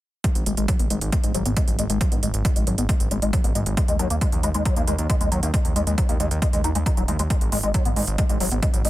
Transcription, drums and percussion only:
0.24 kick, closed hi-hat
0.35 closed hi-hat
0.46 closed hi-hat
0.57 closed hi-hat
0.68 kick, closed hi-hat
0.79 closed hi-hat
0.90 closed hi-hat
1.01 closed hi-hat
1.12 kick, closed hi-hat
1.24 closed hi-hat
1.35 closed hi-hat
1.46 closed hi-hat
1.57 kick, closed hi-hat
1.68 closed hi-hat
1.79 closed hi-hat
1.90 closed hi-hat
2.01 kick, closed hi-hat
2.12 closed hi-hat
2.23 closed hi-hat
2.34 closed hi-hat
2.45 kick, closed hi-hat
2.56 closed hi-hat
2.67 closed hi-hat
2.78 closed hi-hat
2.89 kick, closed hi-hat
3.00 closed hi-hat
3.11 closed hi-hat
3.22 closed hi-hat
3.33 kick, closed hi-hat
3.44 closed hi-hat
3.55 closed hi-hat
3.66 closed hi-hat
3.77 kick, closed hi-hat
3.88 closed hi-hat
3.99 closed hi-hat
4.10 closed hi-hat
4.21 kick, closed hi-hat
4.32 closed hi-hat
4.43 closed hi-hat
4.54 closed hi-hat
4.65 kick, closed hi-hat
4.76 closed hi-hat
4.88 closed hi-hat
4.99 closed hi-hat
5.10 kick, closed hi-hat
5.21 closed hi-hat
5.32 closed hi-hat
5.43 closed hi-hat
5.54 kick, closed hi-hat
5.65 closed hi-hat
5.76 closed hi-hat
5.87 closed hi-hat
5.98 kick, closed hi-hat
6.09 closed hi-hat
6.20 closed hi-hat
6.31 closed hi-hat
6.42 kick, closed hi-hat
6.53 closed hi-hat
6.64 closed hi-hat
6.75 closed hi-hat
6.86 kick, closed hi-hat
6.97 closed hi-hat
7.08 closed hi-hat
7.19 closed hi-hat
7.30 kick, closed hi-hat
7.41 closed hi-hat
7.52 open hi-hat
7.63 closed hi-hat
7.74 kick, closed hi-hat
7.85 closed hi-hat
7.96 open hi-hat
8.07 closed hi-hat
8.18 kick, closed hi-hat
8.29 closed hi-hat
8.40 open hi-hat
8.52 closed hi-hat
8.63 kick, closed hi-hat
8.74 closed hi-hat
8.85 open hi-hat

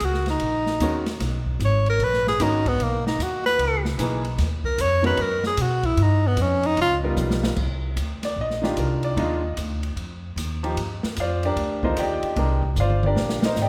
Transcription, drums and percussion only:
0.00 hi-hat pedal, ride
0.14 snare
0.26 snare, ride
0.40 ride
0.66 snare
0.80 hi-hat pedal, ride
1.06 snare, ride
1.20 snare, ride
1.46 kick
1.60 hi-hat pedal, ride
1.86 ride
2.00 ride
2.13 snare
2.27 snare
2.40 hi-hat pedal, ride
2.66 kick, ride
2.80 ride
3.07 snare
3.20 hi-hat pedal, ride
3.46 snare
3.59 ride
3.85 snare
3.99 hi-hat pedal, ride
4.25 ride
4.38 snare, ride
4.64 kick
4.78 hi-hat pedal, ride
5.04 ride
5.17 ride
5.43 snare
5.57 hi-hat pedal, ride
5.83 kick, ride
5.97 ride
6.37 hi-hat pedal, ride
6.63 ride
6.77 ride
7.17 hi-hat pedal, high tom
7.30 snare
7.43 snare
7.56 kick, crash
7.97 hi-hat pedal, ride
8.23 snare, ride
8.50 snare
8.63 snare
8.77 hi-hat pedal, ride
9.03 ride
9.17 ride
9.57 hi-hat pedal, ride
9.83 ride
9.97 ride
10.37 hi-hat pedal, ride
10.64 ride
10.77 ride
11.03 snare
11.16 hi-hat pedal, ride
11.43 ride
11.57 ride
11.83 kick
11.97 hi-hat pedal, ride
12.23 ride
12.36 ride
12.63 kick
12.76 hi-hat pedal, mid tom
12.90 mid tom
13.03 mid tom
13.16 snare
13.29 snare
13.43 snare
13.56 snare, hi-hat pedal

